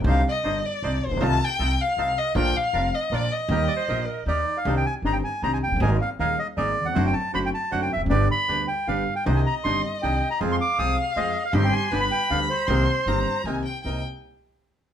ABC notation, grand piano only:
X:1
M:3/4
L:1/16
Q:1/4=157
K:Eb
V:1 name="Grand piano" clef=bass
[C,,C,D,G,CE]2 z2 [G,,,G,,]2 z2 [C,,C,]2 z/2 =A,,,/2 B,,,/2 _C,,/2 | [C,,C,E,=A,CF]2 z2 [C,,C,]2 z2 [C,,C,]2 z2 | [B,,,B,,D,F,B,F]2 z2 [F,,,F,,]2 z2 [B,,,B,,]2 z2 | [E,,E,G,B,G]2 z2 [B,,,B,,]2 z2 [E,,E,]2 z2 |
[K:Cm] [C,,C,E,CDG]2 z2 [G,,,G,,E,CDG]2 z2 [C,,C,E,CDG]2 z/2 F,,,/2 ^F,,,/2 G,,,/2 | [A,,,A,,E,A,B,A]2 z2 [E,,,E,,E,A,B,A]2 z2 [A,,,A,,E,A,B,A]2 z/2 E,,/2 =E,,/2 F,,/2 | [^F,,D,^F,=A,C^F]2 z2 [F,,D,F,A,CF]2 z2 [F,,D,F,A,CF]2 z/2 =E,,/2 =F,,/2 ^F,,/2 | [G,,,G,,D,G,=B,G]2 z2 [D,,D,G,B,G]2 z2 [G,,,G,,D,G,B,G]2 z2 |
[C,,C,E,CDG]2 z2 [G,,,G,,E,CDG]2 z2 [C,,C,E,CDG]2 z2 | [F,,F,A,CA]2 z2 [C,,C,F,A,CA]2 z2 [F,,F,A,CA]2 z2 | [G,,,G,,E,G,CG]2 z2 [G,,,G,,D,G,=B,G]2 z2 [D,,D,G,B,G]2 z2 | [C,,C,E,B,CG]2 z2 [G,,,G,,E,B,CG]2 z2 [C,,C,E,B,CG]2 z2 |
[C,,B,CE]2 z8 z2 |]